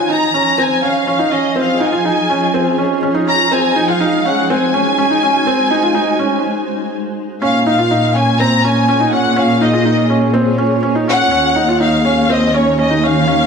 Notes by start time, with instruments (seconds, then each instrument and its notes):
Already playing: ambient pad F3 D#4 D#5, violin section G#5
0.10 felt piano D#4, ambient pad G#4, violin section A#5
0.22 ambient pad F4
0.34 felt piano C#4
0.58 felt piano C4, violin section G#5
0.83 felt piano C#4, violin section F5
1.07 felt piano C#4
1.19 felt piano D#4
1.32 felt piano C#4, violin section D#5
1.56 felt piano C4, violin section F5
1.80 felt piano D#4, violin section G#5
1.92 felt piano F4
2.05 felt piano D#4
2.30 felt piano C#4
2.54 felt piano C4
2.78 felt piano C#4
3.03 felt piano C#4
3.15 felt piano D#4
3.27 felt piano C#4, violin section A#5
3.52 ambient pad G#3, felt piano C4, violin section G#5
3.76 felt piano D#4
3.86 ambient pad D#4, felt piano F4, violin section F5
4.00 felt piano D#4
4.19 ambient pad F#4
4.25 felt piano C#4, violin section F#5
4.50 felt piano C4, violin section G#5
4.74 felt piano C#4
4.98 felt piano C#4
5.09 felt piano D#4, ambient pad C5
5.23 felt piano C#4
5.47 felt piano C4
5.71 felt piano D#4
5.83 felt piano F4
5.95 felt piano D#4
6.19 felt piano C#4
7.42 cello section A#2, ambient pad A#3, felt piano C#4, violin section F5
7.67 felt piano D#4, violin section F5
7.78 felt piano F4
7.91 felt piano D#4
8.08 ambient pad F4
8.15 felt piano C#4, violin section G#5
8.24 ambient pad G#4
8.40 felt piano C4, violin section A#5
8.64 felt piano C#4, violin section G#5
8.88 felt piano C#4, ambient pad C#5
9.00 felt piano D#4
9.13 felt piano C#4, violin section F#5
9.36 felt piano C#4, violin section F5
9.61 felt piano D#4, violin section D#5
9.73 felt piano F4
9.85 felt piano D#4
10.10 felt piano C#4
10.33 felt piano C4
10.58 felt piano C#4
10.83 felt piano C#4
10.95 felt piano D#4
11.08 felt piano C#4, violin section F#5
11.31 cello section D#2, ambient pad D#3, felt piano C#4
11.56 felt piano D#4
11.68 felt piano F4
11.75 ambient pad D#4
11.80 felt piano D#4, violin section F5
12.05 felt piano C#4
12.30 felt piano C4, violin section D#5
12.54 felt piano C#4, violin section C#5
12.62 ambient pad F#4
12.79 felt piano C#4, violin section D#5
12.91 felt piano D#4
13.03 felt piano C#4, violin section F5
13.28 felt piano C#4